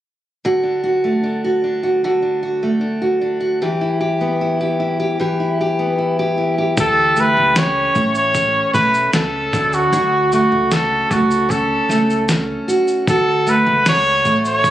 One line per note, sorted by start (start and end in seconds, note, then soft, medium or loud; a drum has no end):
0.45 2.03 D3 medium
0.45 0.82 F#4 medium
0.63 1.22 D4 soft
0.84 1.43 F#4 medium
1.04 2.62 A3 soft
1.23 1.63 D4 soft
1.44 1.82 F#4 medium
1.64 2.21 D4 soft
1.83 2.03 F#4 soft
2.04 3.70 D3 medium
2.04 2.42 F#4 medium
2.22 2.80 D4 soft
2.43 3.00 F#4 medium
2.63 3.69 A3 soft
2.81 3.20 D4 soft
3.02 3.39 F#4 medium
3.21 3.69 D4 soft
3.40 3.61 F#4 medium
3.62 5.19 E3 medium
3.62 4.00 G4 medium
3.81 4.41 E4 soft
4.01 4.60 G4 medium
4.21 5.78 B3 soft
4.41 4.79 E4 medium
4.61 4.99 G4 medium
4.80 5.39 E4 soft
5.00 5.20 G4 medium
5.20 8.70 E3 medium
5.20 5.60 G4 medium
5.40 5.98 E4 soft
5.61 6.19 G4 medium
5.79 6.86 B3 soft
5.98 6.37 E4 soft
6.19 6.58 G4 medium
6.38 7.56 E4 soft
6.58 6.77 G4 soft
6.77 7.26 D2 medium
6.77 9.61 G4 medium
6.77 7.22 A4 medium
6.77 kick loud
6.77 shaker medium
7.16 7.95 A3 medium
7.16 7.60 B4 medium
7.16 shaker medium
7.37 7.85 C#2 medium
7.56 8.35 C#4 medium
7.56 8.16 C#5 loud
7.56 snare loud
7.56 shaker medium
7.95 8.60 A1 medium
7.95 8.74 A3 medium
7.95 kick medium
7.95 shaker soft
8.15 8.72 C#5 loud
8.15 shaker soft
8.34 9.13 C#4 medium
8.34 kick medium
8.34 shaker medium
8.74 9.07 B1 medium
8.74 10.32 A3 medium
8.74 9.11 B4 medium
8.74 kick loud
8.74 snare soft
8.74 shaker medium
8.94 shaker soft
9.13 9.46 C#2 medium
9.13 9.96 C#4 medium
9.13 9.75 A4 medium
9.13 snare loud
9.13 shaker medium
9.53 9.85 D2 medium
9.53 9.93 D3 medium
9.53 kick loud
9.53 shaker medium
9.73 10.32 F#4 medium
9.73 shaker medium
9.93 10.41 D2 loud
9.93 13.43 D3 medium
9.93 12.68 F#4 medium
9.93 shaker medium
10.32 11.11 A3 medium
10.32 10.74 F#4 medium
10.32 shaker medium
10.52 11.00 C#2 medium
10.71 11.48 C#4 medium
10.71 11.12 A4 medium
10.71 snare loud
10.71 shaker medium
11.11 11.75 C#2 medium
11.11 11.89 A3 medium
11.11 11.52 F#4 medium
11.11 kick medium
11.11 shaker soft
11.31 shaker soft
11.49 12.27 C#4 medium
11.49 12.29 A4 medium
11.49 kick medium
11.49 shaker medium
11.89 12.54 C#2 medium
11.89 13.46 A3 medium
11.89 snare soft
11.89 shaker medium
12.10 shaker soft
12.29 13.15 C#4 medium
12.29 snare loud
12.29 shaker medium
12.68 13.08 F#4 medium
12.68 shaker medium
12.88 shaker soft
13.07 13.56 D2 medium
13.07 14.71 F#4 medium
13.07 13.51 A4 loud
13.07 kick loud
13.07 shaker medium
13.47 14.26 A3 medium
13.47 13.87 B4 medium
13.47 shaker medium
13.66 14.25 C#2 medium
13.86 14.63 D4 medium
13.86 14.42 C#5 loud
13.86 snare loud
13.86 shaker medium
14.25 14.71 A1 medium
14.25 14.71 A3 medium
14.25 kick medium
14.25 shaker soft
14.45 14.71 C#5 loud
14.45 shaker soft
14.64 14.71 D4 medium
14.64 kick loud
14.64 shaker medium